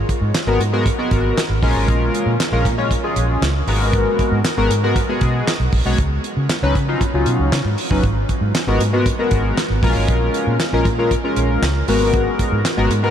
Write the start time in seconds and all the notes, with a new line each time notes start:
0.09 kick, closed hi-hat
0.21 G#2
0.35 snare, clap, closed hi-hat
0.47 G#1 G#3 B3 F#4 A#4
0.60 G#2, closed hi-hat
0.73 G#3 B3 F#4 A#4
0.86 kick, closed hi-hat
0.98 G#3 B3 F#4 A#4
1.11 G#1, kick, closed hi-hat
1.38 snare, clap, closed hi-hat
1.50 G#1
1.63 A#1 G#3 C#4 F4 A#4, kick, open hi-hat
1.75 G#1
1.88 A#1, kick, closed hi-hat
2.14 closed hi-hat
2.26 A#2
2.40 snare, clap, closed hi-hat
2.52 A#1 G#3 C#4 F4 A#4
2.65 A#2, kick, closed hi-hat
2.78 G#3 C#4 F4 C#5
2.91 kick, closed hi-hat
3.04 G#3 C#4 F4 G#4
3.16 A#1, closed hi-hat
3.42 C#2, snare, clap, closed hi-hat
3.67 G#1 G#3 B3 F#4 A#4, open hi-hat
3.93 kick, closed hi-hat
4.19 kick, closed hi-hat
4.32 G#2
4.45 snare, clap, closed hi-hat
4.57 G#1 G#3 B3 F#4 A#4
4.70 G#2, closed hi-hat
4.83 G#3 B3 F#4 A#4
4.96 kick, closed hi-hat
5.09 G#3 B3 F#4 G#4
5.21 B2, kick, closed hi-hat
5.48 snare, clap, closed hi-hat
5.60 B1
5.72 A#1, kick, open hi-hat
5.85 B1 G#3 B3 F#4 C#5
5.98 C#2, kick, closed hi-hat
6.24 closed hi-hat
6.37 C#3
6.50 snare, clap, closed hi-hat
6.62 C#2 F#3 C#4 D#4 B4
6.75 C#3, kick, closed hi-hat
6.88 F#3 C#4 D#4 F4
7.01 kick, closed hi-hat
7.14 C#2 F#3 C#4 D#4 F4
7.26 B2, closed hi-hat
7.39 C#2
7.52 C#3, snare, clap, closed hi-hat
7.65 G#2
7.78 open hi-hat
7.91 F#1 F#3 C#4 D#4 B4, kick
8.04 G#1, kick, closed hi-hat
8.29 kick, closed hi-hat
8.41 G#2
8.55 snare, clap, closed hi-hat
8.67 G#1 G#3 B3 F#4 A#4
8.80 G#2, closed hi-hat
8.93 G#3 B3 F#4 A#4
9.06 kick, closed hi-hat
9.19 G#3 B3 F#4 A#4
9.31 G#1, kick, closed hi-hat
9.58 snare, clap, closed hi-hat
9.70 G#1
9.83 A#1 G#3 B3 F4 A#4, kick, open hi-hat
9.90 C#4
9.96 G#1
10.08 A#1, kick, closed hi-hat
10.34 closed hi-hat
10.47 A#2
10.60 snare, clap, closed hi-hat
10.73 A#1 G#3 C#4 F4 A#4
10.85 A#2, kick, closed hi-hat
10.98 G#3 C#4 F4 A#4
11.11 kick, closed hi-hat
11.24 G#3 C#4 F4 A#4
11.36 A#1, closed hi-hat
11.62 C#2, snare, clap, closed hi-hat
11.88 G#1 G#3 B3 F#4 A#4, open hi-hat
12.14 kick, closed hi-hat
12.39 kick, closed hi-hat
12.52 G#2
12.65 snare, clap, closed hi-hat
12.77 G#1 G#3 B3 F#4 A#4
12.91 G#2, closed hi-hat
13.03 G#3 B3 F#4 A#4